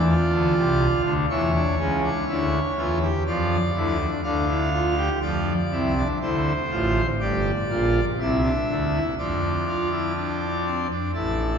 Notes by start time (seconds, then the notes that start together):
Already playing: E2 E3 D5
0.08 F4
0.32 D2 D3
0.55 C2 C3
1.04 D2 D3
1.30 E2 E3 E4 C#5
1.54 D4
1.79 C#2 C#3 C#4
2.03 D4
2.28 D2 D3 E4
2.78 E2 E3 F4
3.03 G4
3.27 F2 F3 F4 D5
3.76 D2 D3 E4
4.00 D4
4.24 D2 D3 D4 F5
4.49 E4
4.74 F4
4.98 G4
5.22 F2 F3 F4 D5
5.71 C2 C3 E4
5.98 D4
6.21 D2 D3 E4 C5
6.70 A1 A2 F4
7.20 G1 G2 G4 D5
7.69 A#1 A#2 F4
8.20 C2 C3 E4 E5
8.43 D4
8.68 D2 D3
8.93 E4
9.18 F2 F3 D4 D5
9.68 F4
9.92 E4
10.16 D4
10.66 C4
10.90 D4
11.14 A1 A2 E4 A5